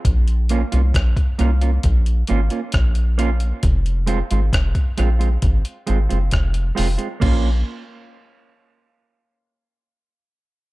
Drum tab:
CC |----------------|----------------|x---------------|
HH |xxxxxxxxxxxxxxxx|xxxxxxxxxxxxxxox|----------------|
SD |----r-------r---|----r-------r---|----------------|
FT |----------------|----------------|o---------------|
BD |o---oo--o---o---|o---oo--o---o---|o---------------|